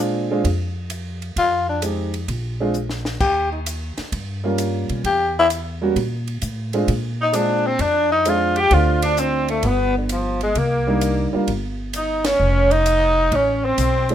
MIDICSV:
0, 0, Header, 1, 7, 480
1, 0, Start_track
1, 0, Tempo, 459770
1, 1425, Time_signature, 4, 2, 24, 8
1, 14771, End_track
2, 0, Start_track
2, 0, Title_t, "Tenor saxophone"
2, 0, Program_c, 0, 66
2, 1443, Note_on_c, 0, 65, 79
2, 1737, Note_off_c, 0, 65, 0
2, 1765, Note_on_c, 0, 62, 57
2, 1902, Note_off_c, 0, 62, 0
2, 3346, Note_on_c, 0, 67, 80
2, 3647, Note_off_c, 0, 67, 0
2, 3673, Note_on_c, 0, 63, 38
2, 3749, Note_off_c, 0, 63, 0
2, 5281, Note_on_c, 0, 67, 78
2, 5574, Note_off_c, 0, 67, 0
2, 5629, Note_on_c, 0, 64, 87
2, 5709, Note_off_c, 0, 64, 0
2, 7541, Note_on_c, 0, 63, 77
2, 7684, Note_on_c, 0, 62, 81
2, 7700, Note_off_c, 0, 63, 0
2, 8009, Note_on_c, 0, 60, 71
2, 8025, Note_off_c, 0, 62, 0
2, 8160, Note_on_c, 0, 62, 81
2, 8176, Note_off_c, 0, 60, 0
2, 8466, Note_off_c, 0, 62, 0
2, 8472, Note_on_c, 0, 63, 86
2, 8657, Note_on_c, 0, 65, 73
2, 8673, Note_off_c, 0, 63, 0
2, 8982, Note_on_c, 0, 67, 98
2, 8998, Note_off_c, 0, 65, 0
2, 9123, Note_on_c, 0, 65, 65
2, 9138, Note_off_c, 0, 67, 0
2, 9438, Note_off_c, 0, 65, 0
2, 9447, Note_on_c, 0, 62, 70
2, 9613, Note_on_c, 0, 60, 73
2, 9629, Note_off_c, 0, 62, 0
2, 9924, Note_off_c, 0, 60, 0
2, 9932, Note_on_c, 0, 57, 69
2, 10100, Note_on_c, 0, 59, 81
2, 10115, Note_off_c, 0, 57, 0
2, 10408, Note_off_c, 0, 59, 0
2, 10416, Note_on_c, 0, 50, 40
2, 10565, Note_on_c, 0, 53, 62
2, 10580, Note_off_c, 0, 50, 0
2, 10880, Note_off_c, 0, 53, 0
2, 10889, Note_on_c, 0, 56, 75
2, 11051, Note_on_c, 0, 58, 65
2, 11066, Note_off_c, 0, 56, 0
2, 11844, Note_off_c, 0, 58, 0
2, 12500, Note_on_c, 0, 63, 72
2, 12800, Note_on_c, 0, 61, 89
2, 12816, Note_off_c, 0, 63, 0
2, 13283, Note_on_c, 0, 63, 101
2, 13298, Note_off_c, 0, 61, 0
2, 13950, Note_on_c, 0, 61, 76
2, 13965, Note_off_c, 0, 63, 0
2, 14252, Note_on_c, 0, 60, 92
2, 14267, Note_off_c, 0, 61, 0
2, 14725, Note_off_c, 0, 60, 0
2, 14771, End_track
3, 0, Start_track
3, 0, Title_t, "Tenor saxophone"
3, 0, Program_c, 1, 66
3, 7527, Note_on_c, 1, 63, 74
3, 7663, Note_on_c, 1, 62, 61
3, 7678, Note_off_c, 1, 63, 0
3, 7997, Note_on_c, 1, 60, 72
3, 8012, Note_off_c, 1, 62, 0
3, 8153, Note_on_c, 1, 62, 68
3, 8168, Note_off_c, 1, 60, 0
3, 8473, Note_off_c, 1, 62, 0
3, 8480, Note_on_c, 1, 63, 65
3, 8638, Note_on_c, 1, 65, 70
3, 8654, Note_off_c, 1, 63, 0
3, 8946, Note_on_c, 1, 67, 81
3, 8961, Note_off_c, 1, 65, 0
3, 9121, Note_on_c, 1, 65, 69
3, 9136, Note_off_c, 1, 67, 0
3, 9423, Note_off_c, 1, 65, 0
3, 9429, Note_on_c, 1, 62, 79
3, 9590, Note_on_c, 1, 60, 68
3, 9605, Note_off_c, 1, 62, 0
3, 9909, Note_off_c, 1, 60, 0
3, 9915, Note_on_c, 1, 57, 59
3, 10064, Note_on_c, 1, 59, 66
3, 10079, Note_off_c, 1, 57, 0
3, 10389, Note_off_c, 1, 59, 0
3, 10402, Note_on_c, 1, 50, 33
3, 10559, Note_on_c, 1, 53, 58
3, 10569, Note_off_c, 1, 50, 0
3, 10877, Note_off_c, 1, 53, 0
3, 10893, Note_on_c, 1, 56, 60
3, 11030, Note_on_c, 1, 58, 60
3, 11046, Note_off_c, 1, 56, 0
3, 11834, Note_off_c, 1, 58, 0
3, 12486, Note_on_c, 1, 63, 60
3, 12790, Note_on_c, 1, 61, 75
3, 12806, Note_off_c, 1, 63, 0
3, 13272, Note_on_c, 1, 63, 97
3, 13287, Note_off_c, 1, 61, 0
3, 13919, Note_on_c, 1, 61, 65
3, 13935, Note_off_c, 1, 63, 0
3, 14234, Note_on_c, 1, 60, 73
3, 14249, Note_off_c, 1, 61, 0
3, 14716, Note_off_c, 1, 60, 0
3, 14771, End_track
4, 0, Start_track
4, 0, Title_t, "Upright piano"
4, 0, Program_c, 2, 0
4, 0, Note_on_c, 2, 56, 68
4, 0, Note_on_c, 2, 60, 60
4, 0, Note_on_c, 2, 62, 66
4, 0, Note_on_c, 2, 65, 82
4, 281, Note_off_c, 2, 56, 0
4, 282, Note_off_c, 2, 60, 0
4, 283, Note_off_c, 2, 62, 0
4, 286, Note_off_c, 2, 65, 0
4, 322, Note_on_c, 2, 56, 65
4, 326, Note_on_c, 2, 62, 65
4, 329, Note_on_c, 2, 60, 61
4, 331, Note_on_c, 2, 65, 75
4, 456, Note_off_c, 2, 56, 0
4, 458, Note_off_c, 2, 62, 0
4, 459, Note_off_c, 2, 60, 0
4, 461, Note_off_c, 2, 65, 0
4, 1901, Note_on_c, 2, 56, 45
4, 1908, Note_on_c, 2, 60, 39
4, 1914, Note_on_c, 2, 63, 39
4, 1918, Note_on_c, 2, 67, 52
4, 2195, Note_off_c, 2, 56, 0
4, 2199, Note_off_c, 2, 60, 0
4, 2202, Note_off_c, 2, 63, 0
4, 2204, Note_off_c, 2, 67, 0
4, 2720, Note_on_c, 2, 56, 62
4, 2720, Note_on_c, 2, 60, 55
4, 2727, Note_on_c, 2, 62, 58
4, 2731, Note_on_c, 2, 65, 69
4, 2853, Note_off_c, 2, 56, 0
4, 2853, Note_off_c, 2, 60, 0
4, 2857, Note_off_c, 2, 62, 0
4, 2859, Note_off_c, 2, 65, 0
4, 4632, Note_on_c, 2, 55, 60
4, 4637, Note_on_c, 2, 58, 62
4, 4646, Note_on_c, 2, 61, 55
4, 4648, Note_on_c, 2, 65, 73
4, 5233, Note_off_c, 2, 55, 0
4, 5235, Note_off_c, 2, 58, 0
4, 5240, Note_off_c, 2, 61, 0
4, 5241, Note_off_c, 2, 65, 0
4, 6071, Note_on_c, 2, 55, 58
4, 6072, Note_on_c, 2, 58, 49
4, 6083, Note_on_c, 2, 66, 65
4, 6085, Note_on_c, 2, 61, 54
4, 6208, Note_off_c, 2, 55, 0
4, 6209, Note_off_c, 2, 58, 0
4, 6214, Note_off_c, 2, 66, 0
4, 6215, Note_off_c, 2, 61, 0
4, 7035, Note_on_c, 2, 56, 67
4, 7036, Note_on_c, 2, 60, 63
4, 7041, Note_on_c, 2, 62, 61
4, 7043, Note_on_c, 2, 65, 71
4, 7170, Note_off_c, 2, 56, 0
4, 7170, Note_off_c, 2, 60, 0
4, 7173, Note_off_c, 2, 62, 0
4, 7174, Note_off_c, 2, 65, 0
4, 7649, Note_on_c, 2, 56, 60
4, 7658, Note_on_c, 2, 60, 57
4, 7658, Note_on_c, 2, 62, 52
4, 7669, Note_on_c, 2, 65, 60
4, 7948, Note_off_c, 2, 56, 0
4, 7953, Note_off_c, 2, 60, 0
4, 7953, Note_off_c, 2, 62, 0
4, 7958, Note_off_c, 2, 65, 0
4, 8618, Note_on_c, 2, 60, 63
4, 8620, Note_on_c, 2, 56, 68
4, 8632, Note_on_c, 2, 62, 56
4, 8633, Note_on_c, 2, 65, 66
4, 8913, Note_off_c, 2, 60, 0
4, 8914, Note_off_c, 2, 56, 0
4, 8920, Note_off_c, 2, 62, 0
4, 8921, Note_off_c, 2, 65, 0
4, 9098, Note_on_c, 2, 57, 66
4, 9101, Note_on_c, 2, 60, 58
4, 9110, Note_on_c, 2, 62, 57
4, 9116, Note_on_c, 2, 65, 73
4, 10061, Note_off_c, 2, 57, 0
4, 10063, Note_off_c, 2, 60, 0
4, 10067, Note_off_c, 2, 62, 0
4, 10070, Note_off_c, 2, 65, 0
4, 11349, Note_on_c, 2, 55, 64
4, 11353, Note_on_c, 2, 58, 62
4, 11358, Note_on_c, 2, 62, 55
4, 11365, Note_on_c, 2, 63, 66
4, 11798, Note_off_c, 2, 55, 0
4, 11800, Note_off_c, 2, 58, 0
4, 11802, Note_off_c, 2, 62, 0
4, 11806, Note_off_c, 2, 63, 0
4, 11826, Note_on_c, 2, 55, 65
4, 11836, Note_on_c, 2, 58, 61
4, 11840, Note_on_c, 2, 62, 58
4, 11844, Note_on_c, 2, 65, 69
4, 11968, Note_off_c, 2, 55, 0
4, 11973, Note_off_c, 2, 58, 0
4, 11975, Note_off_c, 2, 62, 0
4, 11977, Note_off_c, 2, 65, 0
4, 14722, Note_on_c, 2, 53, 60
4, 14723, Note_on_c, 2, 56, 57
4, 14733, Note_on_c, 2, 62, 70
4, 14734, Note_on_c, 2, 60, 60
4, 14771, Note_off_c, 2, 53, 0
4, 14771, Note_off_c, 2, 56, 0
4, 14771, Note_off_c, 2, 60, 0
4, 14771, Note_off_c, 2, 62, 0
4, 14771, End_track
5, 0, Start_track
5, 0, Title_t, "Upright bass"
5, 0, Program_c, 3, 32
5, 0, Note_on_c, 3, 46, 77
5, 423, Note_off_c, 3, 46, 0
5, 465, Note_on_c, 3, 41, 78
5, 1382, Note_off_c, 3, 41, 0
5, 1423, Note_on_c, 3, 41, 75
5, 2341, Note_off_c, 3, 41, 0
5, 2382, Note_on_c, 3, 34, 81
5, 3300, Note_off_c, 3, 34, 0
5, 3346, Note_on_c, 3, 39, 72
5, 4107, Note_off_c, 3, 39, 0
5, 4303, Note_on_c, 3, 43, 80
5, 5066, Note_off_c, 3, 43, 0
5, 5113, Note_on_c, 3, 47, 56
5, 5254, Note_off_c, 3, 47, 0
5, 5266, Note_on_c, 3, 40, 68
5, 6182, Note_off_c, 3, 40, 0
5, 6222, Note_on_c, 3, 46, 84
5, 6668, Note_off_c, 3, 46, 0
5, 6703, Note_on_c, 3, 45, 69
5, 7149, Note_off_c, 3, 45, 0
5, 7184, Note_on_c, 3, 46, 80
5, 8102, Note_off_c, 3, 46, 0
5, 8136, Note_on_c, 3, 41, 77
5, 9058, Note_off_c, 3, 41, 0
5, 9093, Note_on_c, 3, 38, 80
5, 10017, Note_off_c, 3, 38, 0
5, 10052, Note_on_c, 3, 31, 77
5, 10978, Note_off_c, 3, 31, 0
5, 11018, Note_on_c, 3, 36, 75
5, 11786, Note_off_c, 3, 36, 0
5, 11981, Note_on_c, 3, 31, 77
5, 12904, Note_off_c, 3, 31, 0
5, 12940, Note_on_c, 3, 29, 77
5, 13864, Note_off_c, 3, 29, 0
5, 13903, Note_on_c, 3, 33, 82
5, 14354, Note_off_c, 3, 33, 0
5, 14384, Note_on_c, 3, 35, 74
5, 14771, Note_off_c, 3, 35, 0
5, 14771, End_track
6, 0, Start_track
6, 0, Title_t, "Muted upright bass strokes"
6, 4161, Note_on_c, 9, 29, 34
6, 4265, Note_off_c, 9, 29, 0
6, 11839, Note_on_c, 9, 29, 31
6, 11944, Note_off_c, 9, 29, 0
6, 14771, End_track
7, 0, Start_track
7, 0, Title_t, "Drums"
7, 464, Note_on_c, 9, 36, 35
7, 467, Note_on_c, 9, 51, 58
7, 569, Note_off_c, 9, 36, 0
7, 571, Note_off_c, 9, 51, 0
7, 938, Note_on_c, 9, 44, 42
7, 938, Note_on_c, 9, 51, 58
7, 1043, Note_off_c, 9, 44, 0
7, 1043, Note_off_c, 9, 51, 0
7, 1273, Note_on_c, 9, 51, 39
7, 1378, Note_off_c, 9, 51, 0
7, 1424, Note_on_c, 9, 36, 29
7, 1426, Note_on_c, 9, 51, 57
7, 1528, Note_off_c, 9, 36, 0
7, 1530, Note_off_c, 9, 51, 0
7, 1901, Note_on_c, 9, 44, 61
7, 1901, Note_on_c, 9, 51, 63
7, 2005, Note_off_c, 9, 44, 0
7, 2005, Note_off_c, 9, 51, 0
7, 2231, Note_on_c, 9, 51, 44
7, 2336, Note_off_c, 9, 51, 0
7, 2384, Note_on_c, 9, 36, 34
7, 2384, Note_on_c, 9, 51, 57
7, 2488, Note_off_c, 9, 36, 0
7, 2488, Note_off_c, 9, 51, 0
7, 2861, Note_on_c, 9, 44, 44
7, 2965, Note_off_c, 9, 44, 0
7, 3022, Note_on_c, 9, 38, 51
7, 3127, Note_off_c, 9, 38, 0
7, 3186, Note_on_c, 9, 38, 67
7, 3290, Note_off_c, 9, 38, 0
7, 3345, Note_on_c, 9, 49, 69
7, 3346, Note_on_c, 9, 36, 68
7, 3450, Note_off_c, 9, 49, 0
7, 3451, Note_off_c, 9, 36, 0
7, 3825, Note_on_c, 9, 44, 51
7, 3825, Note_on_c, 9, 51, 68
7, 3929, Note_off_c, 9, 44, 0
7, 3929, Note_off_c, 9, 51, 0
7, 4150, Note_on_c, 9, 51, 42
7, 4151, Note_on_c, 9, 38, 46
7, 4254, Note_off_c, 9, 51, 0
7, 4255, Note_off_c, 9, 38, 0
7, 4305, Note_on_c, 9, 36, 31
7, 4305, Note_on_c, 9, 51, 60
7, 4409, Note_off_c, 9, 36, 0
7, 4409, Note_off_c, 9, 51, 0
7, 4784, Note_on_c, 9, 44, 49
7, 4784, Note_on_c, 9, 51, 61
7, 4888, Note_off_c, 9, 44, 0
7, 4888, Note_off_c, 9, 51, 0
7, 5109, Note_on_c, 9, 51, 43
7, 5214, Note_off_c, 9, 51, 0
7, 5265, Note_on_c, 9, 36, 33
7, 5267, Note_on_c, 9, 51, 58
7, 5370, Note_off_c, 9, 36, 0
7, 5371, Note_off_c, 9, 51, 0
7, 5744, Note_on_c, 9, 44, 45
7, 5744, Note_on_c, 9, 51, 58
7, 5848, Note_off_c, 9, 44, 0
7, 5848, Note_off_c, 9, 51, 0
7, 6223, Note_on_c, 9, 36, 32
7, 6225, Note_on_c, 9, 51, 54
7, 6328, Note_off_c, 9, 36, 0
7, 6329, Note_off_c, 9, 51, 0
7, 6551, Note_on_c, 9, 51, 37
7, 6655, Note_off_c, 9, 51, 0
7, 6698, Note_on_c, 9, 44, 56
7, 6698, Note_on_c, 9, 51, 58
7, 6803, Note_off_c, 9, 44, 0
7, 6803, Note_off_c, 9, 51, 0
7, 7027, Note_on_c, 9, 51, 41
7, 7132, Note_off_c, 9, 51, 0
7, 7183, Note_on_c, 9, 36, 33
7, 7183, Note_on_c, 9, 51, 55
7, 7287, Note_off_c, 9, 36, 0
7, 7288, Note_off_c, 9, 51, 0
7, 7657, Note_on_c, 9, 44, 54
7, 7657, Note_on_c, 9, 51, 63
7, 7762, Note_off_c, 9, 44, 0
7, 7762, Note_off_c, 9, 51, 0
7, 8133, Note_on_c, 9, 51, 57
7, 8137, Note_on_c, 9, 36, 34
7, 8238, Note_off_c, 9, 51, 0
7, 8241, Note_off_c, 9, 36, 0
7, 8616, Note_on_c, 9, 44, 43
7, 8616, Note_on_c, 9, 51, 64
7, 8721, Note_off_c, 9, 44, 0
7, 8721, Note_off_c, 9, 51, 0
7, 8934, Note_on_c, 9, 51, 37
7, 9039, Note_off_c, 9, 51, 0
7, 9090, Note_on_c, 9, 51, 57
7, 9094, Note_on_c, 9, 36, 34
7, 9195, Note_off_c, 9, 51, 0
7, 9198, Note_off_c, 9, 36, 0
7, 9421, Note_on_c, 9, 51, 61
7, 9525, Note_off_c, 9, 51, 0
7, 9573, Note_on_c, 9, 44, 59
7, 9678, Note_off_c, 9, 44, 0
7, 9901, Note_on_c, 9, 51, 43
7, 10006, Note_off_c, 9, 51, 0
7, 10050, Note_on_c, 9, 51, 58
7, 10056, Note_on_c, 9, 36, 33
7, 10155, Note_off_c, 9, 51, 0
7, 10160, Note_off_c, 9, 36, 0
7, 10537, Note_on_c, 9, 44, 47
7, 10537, Note_on_c, 9, 51, 59
7, 10641, Note_off_c, 9, 44, 0
7, 10641, Note_off_c, 9, 51, 0
7, 10864, Note_on_c, 9, 51, 41
7, 10969, Note_off_c, 9, 51, 0
7, 11018, Note_on_c, 9, 51, 57
7, 11020, Note_on_c, 9, 36, 32
7, 11122, Note_off_c, 9, 51, 0
7, 11125, Note_off_c, 9, 36, 0
7, 11498, Note_on_c, 9, 44, 64
7, 11498, Note_on_c, 9, 51, 58
7, 11602, Note_off_c, 9, 44, 0
7, 11602, Note_off_c, 9, 51, 0
7, 11981, Note_on_c, 9, 51, 55
7, 11984, Note_on_c, 9, 36, 29
7, 12085, Note_off_c, 9, 51, 0
7, 12089, Note_off_c, 9, 36, 0
7, 12459, Note_on_c, 9, 44, 54
7, 12459, Note_on_c, 9, 51, 64
7, 12564, Note_off_c, 9, 44, 0
7, 12564, Note_off_c, 9, 51, 0
7, 12783, Note_on_c, 9, 51, 65
7, 12785, Note_on_c, 9, 38, 79
7, 12888, Note_off_c, 9, 51, 0
7, 12889, Note_off_c, 9, 38, 0
7, 13270, Note_on_c, 9, 51, 44
7, 13375, Note_off_c, 9, 51, 0
7, 13423, Note_on_c, 9, 44, 55
7, 13423, Note_on_c, 9, 51, 63
7, 13527, Note_off_c, 9, 44, 0
7, 13527, Note_off_c, 9, 51, 0
7, 13903, Note_on_c, 9, 51, 54
7, 13905, Note_on_c, 9, 36, 30
7, 14008, Note_off_c, 9, 51, 0
7, 14010, Note_off_c, 9, 36, 0
7, 14384, Note_on_c, 9, 44, 45
7, 14384, Note_on_c, 9, 51, 60
7, 14489, Note_off_c, 9, 44, 0
7, 14489, Note_off_c, 9, 51, 0
7, 14710, Note_on_c, 9, 51, 40
7, 14771, Note_off_c, 9, 51, 0
7, 14771, End_track
0, 0, End_of_file